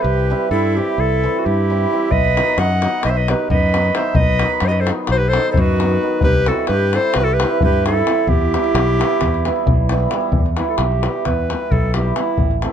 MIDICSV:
0, 0, Header, 1, 6, 480
1, 0, Start_track
1, 0, Key_signature, 1, "minor"
1, 0, Tempo, 456969
1, 39, Time_signature, 9, 3, 24, 8
1, 13366, End_track
2, 0, Start_track
2, 0, Title_t, "Clarinet"
2, 0, Program_c, 0, 71
2, 12, Note_on_c, 0, 71, 91
2, 520, Note_off_c, 0, 71, 0
2, 532, Note_on_c, 0, 69, 82
2, 798, Note_on_c, 0, 67, 93
2, 814, Note_off_c, 0, 69, 0
2, 1049, Note_on_c, 0, 69, 96
2, 1065, Note_off_c, 0, 67, 0
2, 1464, Note_off_c, 0, 69, 0
2, 1464, Note_on_c, 0, 69, 65
2, 1524, Note_on_c, 0, 67, 83
2, 1540, Note_off_c, 0, 69, 0
2, 2219, Note_on_c, 0, 75, 101
2, 2235, Note_off_c, 0, 67, 0
2, 2720, Note_on_c, 0, 78, 86
2, 2736, Note_off_c, 0, 75, 0
2, 3194, Note_off_c, 0, 78, 0
2, 3200, Note_on_c, 0, 75, 81
2, 3259, Note_on_c, 0, 76, 78
2, 3275, Note_off_c, 0, 75, 0
2, 3329, Note_on_c, 0, 75, 89
2, 3345, Note_off_c, 0, 76, 0
2, 3471, Note_on_c, 0, 71, 78
2, 3486, Note_off_c, 0, 75, 0
2, 3676, Note_off_c, 0, 71, 0
2, 3683, Note_on_c, 0, 75, 75
2, 4153, Note_on_c, 0, 76, 93
2, 4169, Note_off_c, 0, 75, 0
2, 4371, Note_on_c, 0, 75, 127
2, 4387, Note_off_c, 0, 76, 0
2, 4728, Note_off_c, 0, 75, 0
2, 4875, Note_on_c, 0, 72, 95
2, 4913, Note_on_c, 0, 75, 94
2, 4929, Note_off_c, 0, 72, 0
2, 5045, Note_on_c, 0, 72, 84
2, 5060, Note_off_c, 0, 75, 0
2, 5154, Note_off_c, 0, 72, 0
2, 5372, Note_on_c, 0, 72, 104
2, 5434, Note_on_c, 0, 71, 91
2, 5450, Note_off_c, 0, 72, 0
2, 5553, Note_on_c, 0, 72, 114
2, 5569, Note_off_c, 0, 71, 0
2, 5790, Note_off_c, 0, 72, 0
2, 5796, Note_on_c, 0, 72, 73
2, 5890, Note_on_c, 0, 71, 94
2, 5906, Note_off_c, 0, 72, 0
2, 6544, Note_off_c, 0, 71, 0
2, 6551, Note_on_c, 0, 71, 109
2, 6806, Note_on_c, 0, 69, 87
2, 6821, Note_off_c, 0, 71, 0
2, 7006, Note_off_c, 0, 69, 0
2, 7012, Note_on_c, 0, 71, 98
2, 7300, Note_on_c, 0, 72, 104
2, 7316, Note_off_c, 0, 71, 0
2, 7528, Note_on_c, 0, 71, 99
2, 7544, Note_off_c, 0, 72, 0
2, 7605, Note_on_c, 0, 69, 97
2, 7620, Note_off_c, 0, 71, 0
2, 7707, Note_on_c, 0, 71, 92
2, 7723, Note_off_c, 0, 69, 0
2, 8019, Note_off_c, 0, 71, 0
2, 8029, Note_on_c, 0, 71, 96
2, 8246, Note_off_c, 0, 71, 0
2, 8262, Note_on_c, 0, 69, 90
2, 8706, Note_on_c, 0, 67, 102
2, 8721, Note_off_c, 0, 69, 0
2, 10415, Note_off_c, 0, 67, 0
2, 11115, Note_on_c, 0, 64, 66
2, 11231, Note_on_c, 0, 69, 51
2, 11247, Note_off_c, 0, 64, 0
2, 11310, Note_on_c, 0, 67, 73
2, 11326, Note_off_c, 0, 69, 0
2, 11821, Note_on_c, 0, 71, 88
2, 11837, Note_off_c, 0, 67, 0
2, 12304, Note_on_c, 0, 69, 81
2, 12320, Note_off_c, 0, 71, 0
2, 12542, Note_on_c, 0, 67, 77
2, 12558, Note_off_c, 0, 69, 0
2, 12771, Note_off_c, 0, 67, 0
2, 12775, Note_on_c, 0, 64, 71
2, 13228, Note_off_c, 0, 64, 0
2, 13366, End_track
3, 0, Start_track
3, 0, Title_t, "Recorder"
3, 0, Program_c, 1, 74
3, 35, Note_on_c, 1, 67, 89
3, 528, Note_off_c, 1, 67, 0
3, 534, Note_on_c, 1, 64, 96
3, 810, Note_off_c, 1, 64, 0
3, 810, Note_on_c, 1, 64, 81
3, 1018, Note_off_c, 1, 64, 0
3, 1018, Note_on_c, 1, 64, 83
3, 1454, Note_on_c, 1, 66, 52
3, 1470, Note_off_c, 1, 64, 0
3, 1534, Note_on_c, 1, 64, 86
3, 1550, Note_off_c, 1, 66, 0
3, 2217, Note_on_c, 1, 71, 113
3, 2233, Note_off_c, 1, 64, 0
3, 2721, Note_on_c, 1, 75, 92
3, 2737, Note_off_c, 1, 71, 0
3, 3201, Note_off_c, 1, 75, 0
3, 3207, Note_on_c, 1, 71, 83
3, 3250, Note_on_c, 1, 72, 73
3, 3265, Note_off_c, 1, 71, 0
3, 3329, Note_on_c, 1, 71, 75
3, 3344, Note_off_c, 1, 72, 0
3, 3465, Note_on_c, 1, 67, 66
3, 3481, Note_off_c, 1, 71, 0
3, 3689, Note_off_c, 1, 67, 0
3, 3699, Note_on_c, 1, 71, 88
3, 4165, Note_on_c, 1, 72, 79
3, 4180, Note_off_c, 1, 71, 0
3, 4410, Note_on_c, 1, 71, 96
3, 4425, Note_off_c, 1, 72, 0
3, 4882, Note_off_c, 1, 71, 0
3, 4920, Note_on_c, 1, 66, 81
3, 4954, Note_on_c, 1, 71, 60
3, 4970, Note_off_c, 1, 66, 0
3, 5055, Note_on_c, 1, 69, 83
3, 5071, Note_off_c, 1, 71, 0
3, 5159, Note_off_c, 1, 69, 0
3, 5392, Note_on_c, 1, 66, 83
3, 5457, Note_on_c, 1, 67, 66
3, 5473, Note_off_c, 1, 66, 0
3, 5548, Note_on_c, 1, 69, 100
3, 5564, Note_off_c, 1, 67, 0
3, 5777, Note_off_c, 1, 69, 0
3, 5783, Note_on_c, 1, 69, 59
3, 5868, Note_on_c, 1, 66, 102
3, 5884, Note_off_c, 1, 69, 0
3, 6536, Note_off_c, 1, 66, 0
3, 6543, Note_on_c, 1, 67, 97
3, 6809, Note_on_c, 1, 66, 82
3, 6825, Note_off_c, 1, 67, 0
3, 7028, Note_off_c, 1, 66, 0
3, 7043, Note_on_c, 1, 67, 97
3, 7299, Note_on_c, 1, 69, 85
3, 7315, Note_off_c, 1, 67, 0
3, 7521, Note_on_c, 1, 67, 81
3, 7537, Note_off_c, 1, 69, 0
3, 7589, Note_on_c, 1, 66, 79
3, 7604, Note_off_c, 1, 67, 0
3, 7673, Note_on_c, 1, 67, 99
3, 7689, Note_off_c, 1, 66, 0
3, 8002, Note_off_c, 1, 67, 0
3, 8021, Note_on_c, 1, 67, 90
3, 8242, Note_off_c, 1, 67, 0
3, 8268, Note_on_c, 1, 64, 79
3, 8694, Note_off_c, 1, 64, 0
3, 8694, Note_on_c, 1, 64, 90
3, 10409, Note_off_c, 1, 64, 0
3, 13366, End_track
4, 0, Start_track
4, 0, Title_t, "Hammered dulcimer"
4, 0, Program_c, 2, 15
4, 0, Note_on_c, 2, 52, 57
4, 0, Note_on_c, 2, 55, 47
4, 301, Note_off_c, 2, 52, 0
4, 307, Note_off_c, 2, 55, 0
4, 314, Note_on_c, 2, 52, 58
4, 319, Note_on_c, 2, 55, 66
4, 323, Note_on_c, 2, 60, 55
4, 328, Note_on_c, 2, 64, 75
4, 489, Note_off_c, 2, 60, 0
4, 492, Note_off_c, 2, 64, 0
4, 789, Note_off_c, 2, 52, 0
4, 793, Note_off_c, 2, 55, 0
4, 801, Note_on_c, 2, 52, 61
4, 805, Note_on_c, 2, 55, 52
4, 811, Note_on_c, 2, 60, 53
4, 816, Note_on_c, 2, 64, 69
4, 981, Note_off_c, 2, 60, 0
4, 983, Note_off_c, 2, 64, 0
4, 1284, Note_off_c, 2, 52, 0
4, 1285, Note_off_c, 2, 55, 0
4, 1296, Note_on_c, 2, 52, 72
4, 1298, Note_on_c, 2, 55, 64
4, 1305, Note_on_c, 2, 60, 59
4, 1313, Note_on_c, 2, 64, 70
4, 1474, Note_off_c, 2, 60, 0
4, 1478, Note_off_c, 2, 64, 0
4, 1771, Note_off_c, 2, 52, 0
4, 1773, Note_off_c, 2, 55, 0
4, 1783, Note_on_c, 2, 52, 52
4, 1786, Note_on_c, 2, 55, 60
4, 1790, Note_on_c, 2, 60, 47
4, 1797, Note_on_c, 2, 64, 62
4, 1950, Note_off_c, 2, 60, 0
4, 1953, Note_off_c, 2, 64, 0
4, 1994, Note_off_c, 2, 52, 0
4, 1998, Note_off_c, 2, 55, 0
4, 2006, Note_on_c, 2, 52, 55
4, 2011, Note_on_c, 2, 55, 47
4, 2020, Note_on_c, 2, 60, 50
4, 2026, Note_on_c, 2, 64, 66
4, 2174, Note_off_c, 2, 60, 0
4, 2177, Note_off_c, 2, 64, 0
4, 2263, Note_off_c, 2, 52, 0
4, 2263, Note_off_c, 2, 55, 0
4, 2482, Note_on_c, 2, 51, 72
4, 2487, Note_on_c, 2, 54, 65
4, 2497, Note_on_c, 2, 59, 58
4, 2498, Note_on_c, 2, 63, 72
4, 2661, Note_off_c, 2, 59, 0
4, 2661, Note_off_c, 2, 63, 0
4, 2957, Note_off_c, 2, 51, 0
4, 2970, Note_on_c, 2, 51, 57
4, 2971, Note_off_c, 2, 54, 0
4, 2983, Note_on_c, 2, 54, 60
4, 2990, Note_on_c, 2, 59, 54
4, 2992, Note_on_c, 2, 63, 67
4, 3153, Note_off_c, 2, 59, 0
4, 3154, Note_off_c, 2, 63, 0
4, 3450, Note_off_c, 2, 51, 0
4, 3456, Note_off_c, 2, 54, 0
4, 3462, Note_on_c, 2, 51, 68
4, 3468, Note_on_c, 2, 54, 60
4, 3478, Note_on_c, 2, 59, 57
4, 3479, Note_on_c, 2, 63, 66
4, 3643, Note_off_c, 2, 59, 0
4, 3644, Note_off_c, 2, 63, 0
4, 3912, Note_off_c, 2, 51, 0
4, 3925, Note_on_c, 2, 51, 48
4, 3928, Note_off_c, 2, 54, 0
4, 3940, Note_on_c, 2, 54, 58
4, 3942, Note_on_c, 2, 59, 58
4, 3951, Note_on_c, 2, 63, 60
4, 4107, Note_off_c, 2, 59, 0
4, 4111, Note_off_c, 2, 63, 0
4, 4138, Note_off_c, 2, 51, 0
4, 4141, Note_off_c, 2, 54, 0
4, 4150, Note_on_c, 2, 51, 58
4, 4153, Note_on_c, 2, 54, 53
4, 4161, Note_on_c, 2, 59, 61
4, 4167, Note_on_c, 2, 63, 57
4, 4326, Note_off_c, 2, 59, 0
4, 4329, Note_off_c, 2, 63, 0
4, 4625, Note_off_c, 2, 51, 0
4, 4633, Note_off_c, 2, 54, 0
4, 4638, Note_on_c, 2, 51, 64
4, 4645, Note_on_c, 2, 54, 61
4, 4656, Note_on_c, 2, 59, 66
4, 4657, Note_on_c, 2, 63, 61
4, 4821, Note_off_c, 2, 59, 0
4, 4821, Note_off_c, 2, 63, 0
4, 5114, Note_off_c, 2, 51, 0
4, 5118, Note_off_c, 2, 54, 0
4, 5127, Note_on_c, 2, 51, 58
4, 5131, Note_on_c, 2, 54, 59
4, 5136, Note_on_c, 2, 59, 65
4, 5148, Note_on_c, 2, 63, 70
4, 5306, Note_off_c, 2, 59, 0
4, 5312, Note_off_c, 2, 63, 0
4, 5606, Note_off_c, 2, 51, 0
4, 5613, Note_off_c, 2, 54, 0
4, 5619, Note_on_c, 2, 51, 64
4, 5626, Note_on_c, 2, 54, 60
4, 5630, Note_on_c, 2, 59, 59
4, 5637, Note_on_c, 2, 63, 73
4, 5798, Note_off_c, 2, 59, 0
4, 5802, Note_off_c, 2, 63, 0
4, 6077, Note_off_c, 2, 51, 0
4, 6089, Note_on_c, 2, 51, 56
4, 6091, Note_off_c, 2, 54, 0
4, 6103, Note_on_c, 2, 54, 51
4, 6109, Note_on_c, 2, 59, 59
4, 6109, Note_on_c, 2, 63, 61
4, 6269, Note_off_c, 2, 63, 0
4, 6270, Note_off_c, 2, 59, 0
4, 6303, Note_off_c, 2, 51, 0
4, 6310, Note_off_c, 2, 54, 0
4, 6315, Note_on_c, 2, 51, 55
4, 6322, Note_on_c, 2, 54, 51
4, 6335, Note_on_c, 2, 59, 50
4, 6335, Note_on_c, 2, 63, 67
4, 6491, Note_off_c, 2, 63, 0
4, 6492, Note_off_c, 2, 59, 0
4, 6583, Note_off_c, 2, 51, 0
4, 6583, Note_off_c, 2, 54, 0
4, 6799, Note_on_c, 2, 52, 62
4, 6810, Note_on_c, 2, 55, 55
4, 6812, Note_on_c, 2, 60, 68
4, 6818, Note_on_c, 2, 64, 72
4, 6977, Note_off_c, 2, 60, 0
4, 6980, Note_off_c, 2, 64, 0
4, 7280, Note_off_c, 2, 52, 0
4, 7283, Note_off_c, 2, 55, 0
4, 7292, Note_on_c, 2, 52, 53
4, 7296, Note_on_c, 2, 55, 56
4, 7310, Note_on_c, 2, 60, 61
4, 7315, Note_on_c, 2, 64, 60
4, 7472, Note_off_c, 2, 60, 0
4, 7473, Note_off_c, 2, 64, 0
4, 7769, Note_off_c, 2, 52, 0
4, 7782, Note_off_c, 2, 55, 0
4, 7782, Note_on_c, 2, 52, 66
4, 7794, Note_on_c, 2, 55, 50
4, 7803, Note_on_c, 2, 60, 63
4, 7808, Note_on_c, 2, 64, 77
4, 7963, Note_off_c, 2, 60, 0
4, 7965, Note_off_c, 2, 64, 0
4, 8244, Note_off_c, 2, 52, 0
4, 8245, Note_off_c, 2, 55, 0
4, 8256, Note_on_c, 2, 52, 69
4, 8258, Note_on_c, 2, 55, 51
4, 8261, Note_on_c, 2, 60, 63
4, 8277, Note_on_c, 2, 64, 61
4, 8423, Note_off_c, 2, 60, 0
4, 8431, Note_off_c, 2, 64, 0
4, 8464, Note_off_c, 2, 52, 0
4, 8473, Note_off_c, 2, 55, 0
4, 8477, Note_on_c, 2, 52, 68
4, 8485, Note_on_c, 2, 55, 50
4, 8489, Note_on_c, 2, 64, 59
4, 8491, Note_on_c, 2, 60, 55
4, 8647, Note_off_c, 2, 64, 0
4, 8648, Note_off_c, 2, 60, 0
4, 8739, Note_off_c, 2, 52, 0
4, 8739, Note_off_c, 2, 55, 0
4, 8968, Note_on_c, 2, 52, 63
4, 8971, Note_on_c, 2, 55, 51
4, 8980, Note_on_c, 2, 59, 57
4, 8987, Note_on_c, 2, 64, 70
4, 9139, Note_off_c, 2, 59, 0
4, 9143, Note_off_c, 2, 64, 0
4, 9430, Note_off_c, 2, 52, 0
4, 9437, Note_off_c, 2, 55, 0
4, 9443, Note_on_c, 2, 52, 81
4, 9450, Note_on_c, 2, 55, 64
4, 9456, Note_on_c, 2, 59, 62
4, 9463, Note_on_c, 2, 64, 81
4, 9622, Note_off_c, 2, 59, 0
4, 9626, Note_off_c, 2, 64, 0
4, 9919, Note_off_c, 2, 52, 0
4, 9926, Note_off_c, 2, 55, 0
4, 9931, Note_on_c, 2, 52, 68
4, 9938, Note_on_c, 2, 55, 69
4, 9940, Note_on_c, 2, 59, 66
4, 9950, Note_on_c, 2, 64, 78
4, 10109, Note_off_c, 2, 59, 0
4, 10115, Note_off_c, 2, 64, 0
4, 10400, Note_off_c, 2, 52, 0
4, 10407, Note_off_c, 2, 55, 0
4, 10413, Note_on_c, 2, 52, 66
4, 10420, Note_on_c, 2, 55, 65
4, 10425, Note_on_c, 2, 59, 61
4, 10436, Note_on_c, 2, 64, 69
4, 10583, Note_off_c, 2, 59, 0
4, 10589, Note_off_c, 2, 64, 0
4, 10614, Note_off_c, 2, 52, 0
4, 10623, Note_off_c, 2, 55, 0
4, 10627, Note_on_c, 2, 52, 61
4, 10636, Note_on_c, 2, 55, 69
4, 10637, Note_on_c, 2, 59, 56
4, 10649, Note_on_c, 2, 64, 86
4, 10799, Note_off_c, 2, 59, 0
4, 10805, Note_off_c, 2, 64, 0
4, 10896, Note_off_c, 2, 52, 0
4, 10896, Note_off_c, 2, 55, 0
4, 11103, Note_on_c, 2, 52, 67
4, 11104, Note_on_c, 2, 55, 54
4, 11114, Note_on_c, 2, 59, 49
4, 11116, Note_on_c, 2, 64, 66
4, 11285, Note_off_c, 2, 59, 0
4, 11285, Note_off_c, 2, 64, 0
4, 11570, Note_off_c, 2, 52, 0
4, 11582, Note_off_c, 2, 55, 0
4, 11583, Note_on_c, 2, 52, 61
4, 11594, Note_on_c, 2, 55, 56
4, 11596, Note_on_c, 2, 59, 49
4, 11607, Note_on_c, 2, 64, 62
4, 11770, Note_off_c, 2, 59, 0
4, 11776, Note_off_c, 2, 64, 0
4, 12080, Note_off_c, 2, 52, 0
4, 12082, Note_off_c, 2, 55, 0
4, 12092, Note_on_c, 2, 52, 52
4, 12095, Note_on_c, 2, 55, 52
4, 12099, Note_on_c, 2, 59, 45
4, 12112, Note_on_c, 2, 64, 62
4, 12268, Note_off_c, 2, 59, 0
4, 12274, Note_off_c, 2, 64, 0
4, 12552, Note_off_c, 2, 52, 0
4, 12559, Note_off_c, 2, 55, 0
4, 12564, Note_on_c, 2, 52, 50
4, 12571, Note_on_c, 2, 55, 49
4, 12578, Note_on_c, 2, 59, 44
4, 12583, Note_on_c, 2, 64, 57
4, 12738, Note_off_c, 2, 59, 0
4, 12741, Note_off_c, 2, 64, 0
4, 12766, Note_off_c, 2, 52, 0
4, 12766, Note_off_c, 2, 55, 0
4, 12778, Note_on_c, 2, 52, 56
4, 12779, Note_on_c, 2, 55, 58
4, 12785, Note_on_c, 2, 59, 50
4, 12793, Note_on_c, 2, 64, 59
4, 12951, Note_off_c, 2, 59, 0
4, 12955, Note_off_c, 2, 64, 0
4, 13052, Note_off_c, 2, 52, 0
4, 13052, Note_off_c, 2, 55, 0
4, 13267, Note_on_c, 2, 52, 55
4, 13272, Note_on_c, 2, 57, 51
4, 13284, Note_on_c, 2, 64, 73
4, 13286, Note_on_c, 2, 60, 57
4, 13366, Note_off_c, 2, 52, 0
4, 13366, Note_off_c, 2, 57, 0
4, 13366, Note_off_c, 2, 60, 0
4, 13366, Note_off_c, 2, 64, 0
4, 13366, End_track
5, 0, Start_track
5, 0, Title_t, "Fingered electric bass"
5, 0, Program_c, 3, 33
5, 45, Note_on_c, 3, 36, 87
5, 340, Note_off_c, 3, 36, 0
5, 535, Note_on_c, 3, 43, 92
5, 831, Note_off_c, 3, 43, 0
5, 1028, Note_on_c, 3, 36, 68
5, 1325, Note_off_c, 3, 36, 0
5, 1534, Note_on_c, 3, 43, 82
5, 1943, Note_off_c, 3, 43, 0
5, 2225, Note_on_c, 3, 35, 74
5, 2516, Note_off_c, 3, 35, 0
5, 2706, Note_on_c, 3, 42, 91
5, 3000, Note_off_c, 3, 42, 0
5, 3201, Note_on_c, 3, 35, 81
5, 3495, Note_off_c, 3, 35, 0
5, 3678, Note_on_c, 3, 42, 93
5, 4092, Note_off_c, 3, 42, 0
5, 4358, Note_on_c, 3, 35, 91
5, 4657, Note_off_c, 3, 35, 0
5, 4850, Note_on_c, 3, 42, 99
5, 5149, Note_off_c, 3, 42, 0
5, 5346, Note_on_c, 3, 35, 89
5, 5643, Note_off_c, 3, 35, 0
5, 5854, Note_on_c, 3, 42, 104
5, 6263, Note_off_c, 3, 42, 0
5, 6540, Note_on_c, 3, 36, 91
5, 6831, Note_off_c, 3, 36, 0
5, 7031, Note_on_c, 3, 43, 92
5, 7323, Note_off_c, 3, 43, 0
5, 7518, Note_on_c, 3, 36, 66
5, 7810, Note_off_c, 3, 36, 0
5, 8006, Note_on_c, 3, 43, 93
5, 8415, Note_off_c, 3, 43, 0
5, 8690, Note_on_c, 3, 40, 80
5, 8983, Note_off_c, 3, 40, 0
5, 9185, Note_on_c, 3, 35, 102
5, 9477, Note_off_c, 3, 35, 0
5, 9674, Note_on_c, 3, 40, 69
5, 9967, Note_off_c, 3, 40, 0
5, 10155, Note_on_c, 3, 35, 88
5, 10567, Note_off_c, 3, 35, 0
5, 10838, Note_on_c, 3, 40, 75
5, 11134, Note_off_c, 3, 40, 0
5, 11328, Note_on_c, 3, 35, 84
5, 11624, Note_off_c, 3, 35, 0
5, 11823, Note_on_c, 3, 40, 61
5, 12118, Note_off_c, 3, 40, 0
5, 12307, Note_on_c, 3, 35, 93
5, 12720, Note_off_c, 3, 35, 0
5, 12998, Note_on_c, 3, 33, 69
5, 13292, Note_off_c, 3, 33, 0
5, 13366, End_track
6, 0, Start_track
6, 0, Title_t, "Davul"
6, 2218, Note_on_c, 9, 43, 70
6, 2323, Note_off_c, 9, 43, 0
6, 2358, Note_on_c, 9, 37, 20
6, 2463, Note_off_c, 9, 37, 0
6, 2492, Note_on_c, 9, 37, 65
6, 2597, Note_off_c, 9, 37, 0
6, 2708, Note_on_c, 9, 37, 65
6, 2813, Note_off_c, 9, 37, 0
6, 2962, Note_on_c, 9, 37, 57
6, 3067, Note_off_c, 9, 37, 0
6, 3183, Note_on_c, 9, 37, 73
6, 3288, Note_off_c, 9, 37, 0
6, 3449, Note_on_c, 9, 37, 66
6, 3554, Note_off_c, 9, 37, 0
6, 3673, Note_on_c, 9, 43, 82
6, 3778, Note_off_c, 9, 43, 0
6, 3928, Note_on_c, 9, 37, 65
6, 4033, Note_off_c, 9, 37, 0
6, 4037, Note_on_c, 9, 37, 22
6, 4142, Note_off_c, 9, 37, 0
6, 4146, Note_on_c, 9, 37, 65
6, 4251, Note_off_c, 9, 37, 0
6, 4353, Note_on_c, 9, 43, 101
6, 4458, Note_off_c, 9, 43, 0
6, 4494, Note_on_c, 9, 37, 23
6, 4599, Note_off_c, 9, 37, 0
6, 4616, Note_on_c, 9, 37, 69
6, 4721, Note_off_c, 9, 37, 0
6, 4836, Note_on_c, 9, 37, 65
6, 4941, Note_off_c, 9, 37, 0
6, 5112, Note_on_c, 9, 37, 69
6, 5217, Note_off_c, 9, 37, 0
6, 5328, Note_on_c, 9, 37, 73
6, 5434, Note_off_c, 9, 37, 0
6, 5603, Note_on_c, 9, 37, 66
6, 5708, Note_off_c, 9, 37, 0
6, 5819, Note_on_c, 9, 43, 91
6, 5924, Note_off_c, 9, 43, 0
6, 6092, Note_on_c, 9, 37, 59
6, 6197, Note_off_c, 9, 37, 0
6, 6207, Note_on_c, 9, 37, 19
6, 6312, Note_off_c, 9, 37, 0
6, 6522, Note_on_c, 9, 43, 99
6, 6627, Note_off_c, 9, 43, 0
6, 6658, Note_on_c, 9, 37, 21
6, 6763, Note_off_c, 9, 37, 0
6, 6790, Note_on_c, 9, 37, 60
6, 6895, Note_off_c, 9, 37, 0
6, 7008, Note_on_c, 9, 37, 70
6, 7113, Note_off_c, 9, 37, 0
6, 7279, Note_on_c, 9, 37, 64
6, 7384, Note_off_c, 9, 37, 0
6, 7496, Note_on_c, 9, 37, 86
6, 7601, Note_off_c, 9, 37, 0
6, 7770, Note_on_c, 9, 37, 80
6, 7875, Note_off_c, 9, 37, 0
6, 7987, Note_on_c, 9, 43, 95
6, 8092, Note_off_c, 9, 43, 0
6, 8253, Note_on_c, 9, 37, 68
6, 8358, Note_off_c, 9, 37, 0
6, 8376, Note_on_c, 9, 37, 19
6, 8475, Note_off_c, 9, 37, 0
6, 8475, Note_on_c, 9, 37, 63
6, 8581, Note_off_c, 9, 37, 0
6, 8702, Note_on_c, 9, 43, 89
6, 8807, Note_off_c, 9, 43, 0
6, 8839, Note_on_c, 9, 37, 20
6, 8944, Note_off_c, 9, 37, 0
6, 8971, Note_on_c, 9, 37, 61
6, 9076, Note_off_c, 9, 37, 0
6, 9076, Note_on_c, 9, 37, 31
6, 9181, Note_off_c, 9, 37, 0
6, 9192, Note_on_c, 9, 37, 83
6, 9298, Note_off_c, 9, 37, 0
6, 9462, Note_on_c, 9, 37, 69
6, 9567, Note_off_c, 9, 37, 0
6, 9569, Note_on_c, 9, 37, 27
6, 9671, Note_off_c, 9, 37, 0
6, 9671, Note_on_c, 9, 37, 68
6, 9671, Note_on_c, 9, 43, 64
6, 9776, Note_off_c, 9, 37, 0
6, 9776, Note_off_c, 9, 43, 0
6, 9813, Note_on_c, 9, 37, 23
6, 9918, Note_off_c, 9, 37, 0
6, 9929, Note_on_c, 9, 37, 58
6, 10034, Note_off_c, 9, 37, 0
6, 10039, Note_on_c, 9, 37, 20
6, 10144, Note_off_c, 9, 37, 0
6, 10152, Note_on_c, 9, 43, 94
6, 10257, Note_off_c, 9, 43, 0
6, 10392, Note_on_c, 9, 37, 66
6, 10497, Note_off_c, 9, 37, 0
6, 10507, Note_on_c, 9, 37, 16
6, 10612, Note_off_c, 9, 37, 0
6, 10618, Note_on_c, 9, 37, 64
6, 10723, Note_off_c, 9, 37, 0
6, 10724, Note_on_c, 9, 37, 22
6, 10829, Note_off_c, 9, 37, 0
6, 10846, Note_on_c, 9, 43, 93
6, 10951, Note_off_c, 9, 43, 0
6, 10986, Note_on_c, 9, 37, 23
6, 11091, Note_off_c, 9, 37, 0
6, 11098, Note_on_c, 9, 37, 64
6, 11203, Note_off_c, 9, 37, 0
6, 11322, Note_on_c, 9, 37, 69
6, 11427, Note_off_c, 9, 37, 0
6, 11468, Note_on_c, 9, 37, 18
6, 11574, Note_off_c, 9, 37, 0
6, 11585, Note_on_c, 9, 37, 64
6, 11690, Note_off_c, 9, 37, 0
6, 11820, Note_on_c, 9, 37, 63
6, 11820, Note_on_c, 9, 43, 63
6, 11925, Note_off_c, 9, 37, 0
6, 11925, Note_off_c, 9, 43, 0
6, 12080, Note_on_c, 9, 37, 64
6, 12185, Note_off_c, 9, 37, 0
6, 12300, Note_on_c, 9, 43, 82
6, 12405, Note_off_c, 9, 43, 0
6, 12541, Note_on_c, 9, 37, 65
6, 12646, Note_off_c, 9, 37, 0
6, 12773, Note_on_c, 9, 37, 67
6, 12878, Note_off_c, 9, 37, 0
6, 12999, Note_on_c, 9, 43, 88
6, 13104, Note_off_c, 9, 43, 0
6, 13140, Note_on_c, 9, 37, 20
6, 13245, Note_off_c, 9, 37, 0
6, 13258, Note_on_c, 9, 37, 57
6, 13363, Note_off_c, 9, 37, 0
6, 13366, End_track
0, 0, End_of_file